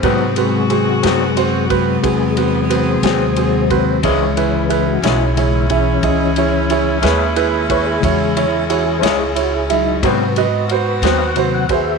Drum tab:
RD |xxxxxxxxxxxx|xxxxxxxxxxxx|xxxxxxxxxxxx|
SD |---o-----o--|---o-----o--|---o-----o--|
BD |o----oo----o|o----oo----o|o-----o----o|